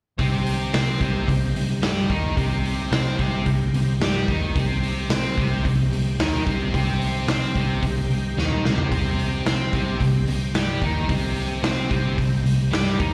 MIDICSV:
0, 0, Header, 1, 5, 480
1, 0, Start_track
1, 0, Key_signature, -3, "minor"
1, 0, Tempo, 544959
1, 166, Time_signature, 4, 2, 24, 8
1, 11570, End_track
2, 0, Start_track
2, 0, Title_t, "Tonewheel organ"
2, 0, Program_c, 0, 16
2, 167, Note_on_c, 0, 63, 65
2, 171, Note_on_c, 0, 67, 63
2, 171, Note_on_c, 0, 72, 66
2, 3981, Note_off_c, 0, 63, 0
2, 3982, Note_off_c, 0, 67, 0
2, 3983, Note_off_c, 0, 72, 0
2, 4020, Note_on_c, 0, 67, 67
2, 4023, Note_on_c, 0, 63, 70
2, 4026, Note_on_c, 0, 72, 66
2, 7820, Note_off_c, 0, 67, 0
2, 7821, Note_off_c, 0, 63, 0
2, 7823, Note_off_c, 0, 72, 0
2, 7841, Note_on_c, 0, 67, 69
2, 7841, Note_on_c, 0, 72, 68
2, 7845, Note_on_c, 0, 75, 70
2, 11570, Note_off_c, 0, 67, 0
2, 11570, Note_off_c, 0, 72, 0
2, 11570, Note_off_c, 0, 75, 0
2, 11570, End_track
3, 0, Start_track
3, 0, Title_t, "Distorted electric guitar"
3, 0, Program_c, 1, 30
3, 159, Note_on_c, 1, 48, 77
3, 168, Note_on_c, 1, 60, 90
3, 628, Note_off_c, 1, 60, 0
3, 637, Note_off_c, 1, 48, 0
3, 638, Note_on_c, 1, 60, 89
3, 642, Note_on_c, 1, 72, 101
3, 876, Note_off_c, 1, 60, 0
3, 878, Note_off_c, 1, 72, 0
3, 887, Note_on_c, 1, 48, 81
3, 899, Note_on_c, 1, 60, 90
3, 1114, Note_off_c, 1, 48, 0
3, 1125, Note_on_c, 1, 48, 69
3, 1127, Note_off_c, 1, 60, 0
3, 1319, Note_off_c, 1, 48, 0
3, 1368, Note_on_c, 1, 48, 67
3, 1561, Note_off_c, 1, 48, 0
3, 1599, Note_on_c, 1, 55, 77
3, 1604, Note_on_c, 1, 67, 92
3, 1838, Note_off_c, 1, 55, 0
3, 1840, Note_off_c, 1, 67, 0
3, 1848, Note_on_c, 1, 51, 78
3, 1852, Note_on_c, 1, 63, 87
3, 2078, Note_off_c, 1, 51, 0
3, 2081, Note_on_c, 1, 48, 94
3, 2085, Note_off_c, 1, 63, 0
3, 2089, Note_on_c, 1, 60, 90
3, 2552, Note_off_c, 1, 60, 0
3, 2560, Note_off_c, 1, 48, 0
3, 2563, Note_on_c, 1, 60, 90
3, 2569, Note_on_c, 1, 72, 92
3, 2794, Note_off_c, 1, 60, 0
3, 2797, Note_on_c, 1, 48, 80
3, 2804, Note_off_c, 1, 72, 0
3, 2805, Note_on_c, 1, 60, 87
3, 3038, Note_off_c, 1, 48, 0
3, 3042, Note_off_c, 1, 60, 0
3, 3053, Note_on_c, 1, 48, 67
3, 3246, Note_off_c, 1, 48, 0
3, 3300, Note_on_c, 1, 48, 71
3, 3489, Note_off_c, 1, 48, 0
3, 3537, Note_on_c, 1, 55, 81
3, 3541, Note_on_c, 1, 67, 107
3, 3769, Note_off_c, 1, 55, 0
3, 3771, Note_off_c, 1, 67, 0
3, 3776, Note_on_c, 1, 51, 83
3, 3780, Note_on_c, 1, 63, 86
3, 4009, Note_off_c, 1, 51, 0
3, 4011, Note_off_c, 1, 63, 0
3, 4022, Note_on_c, 1, 48, 92
3, 4031, Note_on_c, 1, 60, 96
3, 4485, Note_off_c, 1, 60, 0
3, 4492, Note_off_c, 1, 48, 0
3, 4496, Note_on_c, 1, 60, 87
3, 4506, Note_on_c, 1, 72, 91
3, 4729, Note_off_c, 1, 60, 0
3, 4734, Note_off_c, 1, 72, 0
3, 4739, Note_on_c, 1, 48, 75
3, 4747, Note_on_c, 1, 60, 86
3, 4959, Note_off_c, 1, 48, 0
3, 4970, Note_on_c, 1, 48, 73
3, 4974, Note_off_c, 1, 60, 0
3, 5165, Note_off_c, 1, 48, 0
3, 5210, Note_on_c, 1, 48, 68
3, 5405, Note_off_c, 1, 48, 0
3, 5458, Note_on_c, 1, 51, 77
3, 5459, Note_on_c, 1, 63, 96
3, 5685, Note_off_c, 1, 51, 0
3, 5688, Note_off_c, 1, 63, 0
3, 5689, Note_on_c, 1, 48, 88
3, 5691, Note_on_c, 1, 60, 96
3, 5918, Note_off_c, 1, 48, 0
3, 5926, Note_off_c, 1, 60, 0
3, 5929, Note_on_c, 1, 48, 76
3, 5938, Note_on_c, 1, 60, 97
3, 6405, Note_off_c, 1, 48, 0
3, 6409, Note_off_c, 1, 60, 0
3, 6422, Note_on_c, 1, 60, 85
3, 6433, Note_on_c, 1, 72, 98
3, 6651, Note_off_c, 1, 60, 0
3, 6657, Note_off_c, 1, 72, 0
3, 6662, Note_on_c, 1, 48, 80
3, 6670, Note_on_c, 1, 60, 91
3, 6886, Note_off_c, 1, 48, 0
3, 6895, Note_off_c, 1, 60, 0
3, 6897, Note_on_c, 1, 48, 65
3, 7087, Note_off_c, 1, 48, 0
3, 7143, Note_on_c, 1, 48, 66
3, 7330, Note_off_c, 1, 48, 0
3, 7374, Note_on_c, 1, 51, 90
3, 7380, Note_on_c, 1, 63, 90
3, 7606, Note_off_c, 1, 51, 0
3, 7609, Note_off_c, 1, 63, 0
3, 7620, Note_on_c, 1, 48, 82
3, 7624, Note_on_c, 1, 60, 90
3, 7847, Note_off_c, 1, 48, 0
3, 7851, Note_off_c, 1, 60, 0
3, 7858, Note_on_c, 1, 48, 77
3, 7860, Note_on_c, 1, 60, 85
3, 8327, Note_off_c, 1, 48, 0
3, 8328, Note_off_c, 1, 60, 0
3, 8339, Note_on_c, 1, 60, 93
3, 8347, Note_on_c, 1, 72, 105
3, 8568, Note_off_c, 1, 60, 0
3, 8571, Note_off_c, 1, 72, 0
3, 8579, Note_on_c, 1, 48, 75
3, 8583, Note_on_c, 1, 60, 86
3, 8800, Note_off_c, 1, 48, 0
3, 8809, Note_off_c, 1, 60, 0
3, 8811, Note_on_c, 1, 48, 71
3, 9002, Note_off_c, 1, 48, 0
3, 9051, Note_on_c, 1, 48, 71
3, 9242, Note_off_c, 1, 48, 0
3, 9287, Note_on_c, 1, 55, 81
3, 9292, Note_on_c, 1, 67, 93
3, 9520, Note_off_c, 1, 55, 0
3, 9523, Note_off_c, 1, 67, 0
3, 9537, Note_on_c, 1, 51, 80
3, 9541, Note_on_c, 1, 63, 93
3, 9762, Note_off_c, 1, 51, 0
3, 9766, Note_off_c, 1, 63, 0
3, 9766, Note_on_c, 1, 48, 82
3, 9770, Note_on_c, 1, 60, 94
3, 10223, Note_off_c, 1, 60, 0
3, 10234, Note_on_c, 1, 60, 84
3, 10238, Note_off_c, 1, 48, 0
3, 10239, Note_on_c, 1, 72, 97
3, 10466, Note_off_c, 1, 60, 0
3, 10470, Note_on_c, 1, 48, 82
3, 10475, Note_off_c, 1, 72, 0
3, 10477, Note_on_c, 1, 60, 88
3, 10701, Note_off_c, 1, 48, 0
3, 10711, Note_on_c, 1, 48, 70
3, 10713, Note_off_c, 1, 60, 0
3, 10910, Note_off_c, 1, 48, 0
3, 10951, Note_on_c, 1, 48, 66
3, 11149, Note_off_c, 1, 48, 0
3, 11194, Note_on_c, 1, 55, 88
3, 11206, Note_on_c, 1, 67, 92
3, 11431, Note_off_c, 1, 55, 0
3, 11437, Note_off_c, 1, 67, 0
3, 11438, Note_on_c, 1, 51, 85
3, 11443, Note_on_c, 1, 63, 99
3, 11570, Note_off_c, 1, 51, 0
3, 11570, Note_off_c, 1, 63, 0
3, 11570, End_track
4, 0, Start_track
4, 0, Title_t, "Fingered electric bass"
4, 0, Program_c, 2, 33
4, 165, Note_on_c, 2, 36, 87
4, 613, Note_off_c, 2, 36, 0
4, 649, Note_on_c, 2, 48, 86
4, 872, Note_off_c, 2, 48, 0
4, 889, Note_on_c, 2, 36, 84
4, 1113, Note_off_c, 2, 36, 0
4, 1130, Note_on_c, 2, 36, 69
4, 1353, Note_off_c, 2, 36, 0
4, 1366, Note_on_c, 2, 36, 78
4, 1591, Note_off_c, 2, 36, 0
4, 1605, Note_on_c, 2, 43, 91
4, 1831, Note_off_c, 2, 43, 0
4, 1847, Note_on_c, 2, 39, 85
4, 2072, Note_off_c, 2, 39, 0
4, 2091, Note_on_c, 2, 36, 85
4, 2539, Note_off_c, 2, 36, 0
4, 2566, Note_on_c, 2, 48, 91
4, 2793, Note_off_c, 2, 48, 0
4, 2808, Note_on_c, 2, 36, 88
4, 3034, Note_off_c, 2, 36, 0
4, 3049, Note_on_c, 2, 36, 74
4, 3275, Note_off_c, 2, 36, 0
4, 3281, Note_on_c, 2, 36, 76
4, 3511, Note_off_c, 2, 36, 0
4, 3522, Note_on_c, 2, 43, 90
4, 3751, Note_off_c, 2, 43, 0
4, 3771, Note_on_c, 2, 39, 89
4, 3996, Note_off_c, 2, 39, 0
4, 4014, Note_on_c, 2, 36, 88
4, 4462, Note_off_c, 2, 36, 0
4, 4488, Note_on_c, 2, 48, 90
4, 4715, Note_off_c, 2, 48, 0
4, 4739, Note_on_c, 2, 36, 92
4, 4961, Note_off_c, 2, 36, 0
4, 4977, Note_on_c, 2, 36, 70
4, 5200, Note_off_c, 2, 36, 0
4, 5208, Note_on_c, 2, 36, 74
4, 5435, Note_off_c, 2, 36, 0
4, 5452, Note_on_c, 2, 39, 85
4, 5677, Note_off_c, 2, 39, 0
4, 5696, Note_on_c, 2, 36, 92
4, 5919, Note_off_c, 2, 36, 0
4, 5935, Note_on_c, 2, 36, 87
4, 6381, Note_off_c, 2, 36, 0
4, 6403, Note_on_c, 2, 48, 85
4, 6632, Note_off_c, 2, 48, 0
4, 6655, Note_on_c, 2, 36, 88
4, 6878, Note_off_c, 2, 36, 0
4, 6894, Note_on_c, 2, 36, 70
4, 7117, Note_off_c, 2, 36, 0
4, 7125, Note_on_c, 2, 36, 75
4, 7352, Note_off_c, 2, 36, 0
4, 7372, Note_on_c, 2, 39, 81
4, 7596, Note_off_c, 2, 39, 0
4, 7613, Note_on_c, 2, 36, 81
4, 7836, Note_off_c, 2, 36, 0
4, 7852, Note_on_c, 2, 36, 91
4, 8297, Note_off_c, 2, 36, 0
4, 8332, Note_on_c, 2, 48, 85
4, 8555, Note_off_c, 2, 48, 0
4, 8569, Note_on_c, 2, 36, 91
4, 8792, Note_off_c, 2, 36, 0
4, 8815, Note_on_c, 2, 36, 70
4, 9035, Note_off_c, 2, 36, 0
4, 9054, Note_on_c, 2, 36, 75
4, 9275, Note_off_c, 2, 36, 0
4, 9287, Note_on_c, 2, 43, 84
4, 9511, Note_off_c, 2, 43, 0
4, 9528, Note_on_c, 2, 39, 93
4, 9751, Note_off_c, 2, 39, 0
4, 9769, Note_on_c, 2, 36, 87
4, 10214, Note_off_c, 2, 36, 0
4, 10241, Note_on_c, 2, 48, 98
4, 10466, Note_off_c, 2, 48, 0
4, 10485, Note_on_c, 2, 36, 94
4, 10708, Note_off_c, 2, 36, 0
4, 10730, Note_on_c, 2, 36, 67
4, 10950, Note_off_c, 2, 36, 0
4, 10960, Note_on_c, 2, 36, 76
4, 11185, Note_off_c, 2, 36, 0
4, 11201, Note_on_c, 2, 43, 96
4, 11425, Note_off_c, 2, 43, 0
4, 11454, Note_on_c, 2, 39, 84
4, 11570, Note_off_c, 2, 39, 0
4, 11570, End_track
5, 0, Start_track
5, 0, Title_t, "Drums"
5, 168, Note_on_c, 9, 36, 100
5, 169, Note_on_c, 9, 46, 70
5, 256, Note_off_c, 9, 36, 0
5, 257, Note_off_c, 9, 46, 0
5, 409, Note_on_c, 9, 46, 53
5, 497, Note_off_c, 9, 46, 0
5, 650, Note_on_c, 9, 46, 78
5, 653, Note_on_c, 9, 38, 107
5, 738, Note_off_c, 9, 46, 0
5, 741, Note_off_c, 9, 38, 0
5, 888, Note_on_c, 9, 36, 88
5, 888, Note_on_c, 9, 46, 54
5, 976, Note_off_c, 9, 36, 0
5, 976, Note_off_c, 9, 46, 0
5, 1130, Note_on_c, 9, 36, 90
5, 1134, Note_on_c, 9, 46, 77
5, 1218, Note_off_c, 9, 36, 0
5, 1223, Note_off_c, 9, 46, 0
5, 1374, Note_on_c, 9, 46, 57
5, 1463, Note_off_c, 9, 46, 0
5, 1610, Note_on_c, 9, 46, 71
5, 1613, Note_on_c, 9, 38, 100
5, 1698, Note_off_c, 9, 46, 0
5, 1701, Note_off_c, 9, 38, 0
5, 1849, Note_on_c, 9, 36, 104
5, 1852, Note_on_c, 9, 46, 53
5, 1937, Note_off_c, 9, 36, 0
5, 1940, Note_off_c, 9, 46, 0
5, 2090, Note_on_c, 9, 36, 104
5, 2095, Note_on_c, 9, 46, 68
5, 2178, Note_off_c, 9, 36, 0
5, 2183, Note_off_c, 9, 46, 0
5, 2337, Note_on_c, 9, 46, 54
5, 2426, Note_off_c, 9, 46, 0
5, 2575, Note_on_c, 9, 46, 71
5, 2578, Note_on_c, 9, 38, 112
5, 2663, Note_off_c, 9, 46, 0
5, 2666, Note_off_c, 9, 38, 0
5, 2811, Note_on_c, 9, 36, 86
5, 2812, Note_on_c, 9, 46, 49
5, 2899, Note_off_c, 9, 36, 0
5, 2900, Note_off_c, 9, 46, 0
5, 3046, Note_on_c, 9, 46, 68
5, 3050, Note_on_c, 9, 36, 89
5, 3134, Note_off_c, 9, 46, 0
5, 3138, Note_off_c, 9, 36, 0
5, 3295, Note_on_c, 9, 46, 53
5, 3383, Note_off_c, 9, 46, 0
5, 3533, Note_on_c, 9, 46, 60
5, 3537, Note_on_c, 9, 38, 99
5, 3621, Note_off_c, 9, 46, 0
5, 3625, Note_off_c, 9, 38, 0
5, 3772, Note_on_c, 9, 36, 97
5, 3773, Note_on_c, 9, 46, 48
5, 3860, Note_off_c, 9, 36, 0
5, 3861, Note_off_c, 9, 46, 0
5, 4014, Note_on_c, 9, 36, 100
5, 4015, Note_on_c, 9, 46, 68
5, 4102, Note_off_c, 9, 36, 0
5, 4104, Note_off_c, 9, 46, 0
5, 4258, Note_on_c, 9, 46, 51
5, 4346, Note_off_c, 9, 46, 0
5, 4491, Note_on_c, 9, 46, 78
5, 4495, Note_on_c, 9, 38, 111
5, 4579, Note_off_c, 9, 46, 0
5, 4583, Note_off_c, 9, 38, 0
5, 4736, Note_on_c, 9, 36, 86
5, 4740, Note_on_c, 9, 46, 51
5, 4824, Note_off_c, 9, 36, 0
5, 4828, Note_off_c, 9, 46, 0
5, 4977, Note_on_c, 9, 36, 89
5, 4983, Note_on_c, 9, 46, 75
5, 5065, Note_off_c, 9, 36, 0
5, 5071, Note_off_c, 9, 46, 0
5, 5221, Note_on_c, 9, 46, 53
5, 5309, Note_off_c, 9, 46, 0
5, 5458, Note_on_c, 9, 46, 74
5, 5461, Note_on_c, 9, 38, 106
5, 5546, Note_off_c, 9, 46, 0
5, 5549, Note_off_c, 9, 38, 0
5, 5697, Note_on_c, 9, 36, 99
5, 5702, Note_on_c, 9, 46, 55
5, 5785, Note_off_c, 9, 36, 0
5, 5790, Note_off_c, 9, 46, 0
5, 5937, Note_on_c, 9, 36, 105
5, 5942, Note_on_c, 9, 46, 73
5, 6026, Note_off_c, 9, 36, 0
5, 6030, Note_off_c, 9, 46, 0
5, 6179, Note_on_c, 9, 46, 52
5, 6268, Note_off_c, 9, 46, 0
5, 6413, Note_on_c, 9, 46, 79
5, 6416, Note_on_c, 9, 38, 103
5, 6501, Note_off_c, 9, 46, 0
5, 6505, Note_off_c, 9, 38, 0
5, 6655, Note_on_c, 9, 36, 93
5, 6658, Note_on_c, 9, 46, 47
5, 6743, Note_off_c, 9, 36, 0
5, 6746, Note_off_c, 9, 46, 0
5, 6893, Note_on_c, 9, 46, 74
5, 6894, Note_on_c, 9, 36, 84
5, 6981, Note_off_c, 9, 46, 0
5, 6982, Note_off_c, 9, 36, 0
5, 7138, Note_on_c, 9, 46, 49
5, 7226, Note_off_c, 9, 46, 0
5, 7386, Note_on_c, 9, 38, 54
5, 7474, Note_off_c, 9, 38, 0
5, 7495, Note_on_c, 9, 47, 55
5, 7583, Note_off_c, 9, 47, 0
5, 7622, Note_on_c, 9, 38, 81
5, 7711, Note_off_c, 9, 38, 0
5, 7733, Note_on_c, 9, 43, 85
5, 7821, Note_off_c, 9, 43, 0
5, 7854, Note_on_c, 9, 36, 109
5, 7854, Note_on_c, 9, 46, 66
5, 7942, Note_off_c, 9, 36, 0
5, 7942, Note_off_c, 9, 46, 0
5, 8097, Note_on_c, 9, 46, 51
5, 8185, Note_off_c, 9, 46, 0
5, 8333, Note_on_c, 9, 46, 68
5, 8337, Note_on_c, 9, 38, 110
5, 8422, Note_off_c, 9, 46, 0
5, 8425, Note_off_c, 9, 38, 0
5, 8570, Note_on_c, 9, 46, 48
5, 8571, Note_on_c, 9, 36, 93
5, 8658, Note_off_c, 9, 46, 0
5, 8659, Note_off_c, 9, 36, 0
5, 8812, Note_on_c, 9, 36, 88
5, 8816, Note_on_c, 9, 46, 74
5, 8900, Note_off_c, 9, 36, 0
5, 8905, Note_off_c, 9, 46, 0
5, 9050, Note_on_c, 9, 46, 56
5, 9138, Note_off_c, 9, 46, 0
5, 9290, Note_on_c, 9, 46, 68
5, 9293, Note_on_c, 9, 38, 105
5, 9378, Note_off_c, 9, 46, 0
5, 9381, Note_off_c, 9, 38, 0
5, 9529, Note_on_c, 9, 36, 93
5, 9529, Note_on_c, 9, 46, 53
5, 9617, Note_off_c, 9, 36, 0
5, 9617, Note_off_c, 9, 46, 0
5, 9770, Note_on_c, 9, 36, 97
5, 9772, Note_on_c, 9, 46, 75
5, 9858, Note_off_c, 9, 36, 0
5, 9860, Note_off_c, 9, 46, 0
5, 10006, Note_on_c, 9, 46, 57
5, 10094, Note_off_c, 9, 46, 0
5, 10249, Note_on_c, 9, 46, 74
5, 10252, Note_on_c, 9, 38, 107
5, 10337, Note_off_c, 9, 46, 0
5, 10340, Note_off_c, 9, 38, 0
5, 10490, Note_on_c, 9, 36, 91
5, 10494, Note_on_c, 9, 46, 47
5, 10578, Note_off_c, 9, 36, 0
5, 10582, Note_off_c, 9, 46, 0
5, 10729, Note_on_c, 9, 36, 87
5, 10732, Note_on_c, 9, 46, 73
5, 10818, Note_off_c, 9, 36, 0
5, 10820, Note_off_c, 9, 46, 0
5, 10976, Note_on_c, 9, 46, 57
5, 11064, Note_off_c, 9, 46, 0
5, 11213, Note_on_c, 9, 46, 69
5, 11217, Note_on_c, 9, 38, 97
5, 11301, Note_off_c, 9, 46, 0
5, 11305, Note_off_c, 9, 38, 0
5, 11450, Note_on_c, 9, 36, 105
5, 11453, Note_on_c, 9, 46, 50
5, 11538, Note_off_c, 9, 36, 0
5, 11541, Note_off_c, 9, 46, 0
5, 11570, End_track
0, 0, End_of_file